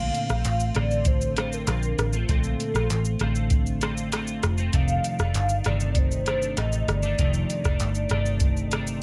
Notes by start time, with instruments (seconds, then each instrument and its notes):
Already playing: clean electric guitar A#2 D3 A3 C4 F4, soft synth lead F5
0.14 closed hi-hat, shaker
0.29 picked electric bass A#1, clean electric guitar A3 C4 F4, cross-stick, shaker
0.45 picked electric bass A1, clap, closed hi-hat, shaker
0.60 shaker
0.75 picked electric bass A1, clean electric guitar D3 A3 C4 F4, soft synth lead D5, cross-stick, closed hi-hat, shaker
0.91 shaker
1.05 soft synth lead C5, kick, closed hi-hat, shaker
1.21 shaker
1.36 clean electric guitar D3 A3 C4 F4, cross-stick, closed hi-hat, shaker
1.53 soft synth lead A#4, shaker
1.67 picked electric bass A#1, clean electric guitar D3 C4 F4, cross-stick, clap, closed hi-hat, shaker
1.83 shaker
1.98 picked electric bass A1, soft synth lead A#4, cross-stick, closed hi-hat, shaker
2.13 clean electric guitar A3 C4 F4, shaker
2.29 picked electric bass A#1, clean electric guitar A#2 D3 A3 C4 F4, soft synth lead A4, kick, closed hi-hat, shaker
2.44 shaker
2.60 closed hi-hat, shaker
2.74 picked electric bass A#1, clean electric guitar A3 C4 F4, cross-stick, shaker
2.90 picked electric bass A1, clap, closed hi-hat, shaker
3.05 shaker
3.19 picked electric bass A1, clean electric guitar D3 A3 C4 F4, cross-stick, closed hi-hat, shaker
3.35 shaker
3.50 kick, closed hi-hat, shaker
3.66 shaker
3.81 clean electric guitar D3 A3 C4 F4, cross-stick, closed hi-hat, shaker
3.97 shaker
4.12 clean electric guitar D3 A3 C4 F4, cross-stick, clap, closed hi-hat, shaker
4.27 shaker
4.43 picked electric bass F1, cross-stick, closed hi-hat, shaker
4.58 clean electric guitar A3 C4 F4, shaker
4.73 picked electric bass F1, clean electric guitar F2 C3 D#3 A3 D4, soft synth lead F5, kick, closed hi-hat, shaker
4.88 shaker
5.04 closed hi-hat, shaker
5.19 picked electric bass F1, clean electric guitar D#3 A3 D4, cross-stick, shaker
5.34 picked electric bass G1, clap, closed hi-hat, shaker
5.49 shaker
5.64 picked electric bass G1, clean electric guitar C3 D#3 A3 D4, soft synth lead D5, cross-stick, closed hi-hat, shaker
5.80 shaker
5.95 soft synth lead C5, kick, closed hi-hat, shaker
6.11 shaker
6.26 clean electric guitar C3 D#3 A3 D4, cross-stick, closed hi-hat, shaker
6.42 shaker
6.57 picked electric bass A1, clean electric guitar C3 D#3 A3, soft synth lead D#5, cross-stick, clap, closed hi-hat, shaker
6.72 shaker
6.88 picked electric bass G1, soft synth lead D5, cross-stick, closed hi-hat, shaker
7.03 clean electric guitar D#3 A3 D4, shaker
7.19 picked electric bass F1, clean electric guitar F2 C3 D#3 A3 D4, kick, closed hi-hat, shaker
7.34 shaker
7.50 closed hi-hat, shaker
7.64 picked electric bass F1, clean electric guitar D#3 A3 D4, kick, cross-stick, shaker
7.80 picked electric bass G1, clap, closed hi-hat, shaker
7.95 shaker
8.09 picked electric bass G1, clean electric guitar C3 D#3 A3 D4, cross-stick, closed hi-hat, shaker
8.26 shaker
8.40 kick, closed hi-hat, shaker
8.57 shaker
8.71 clean electric guitar C3 D#3 A3 D4, cross-stick, closed hi-hat, shaker
8.87 shaker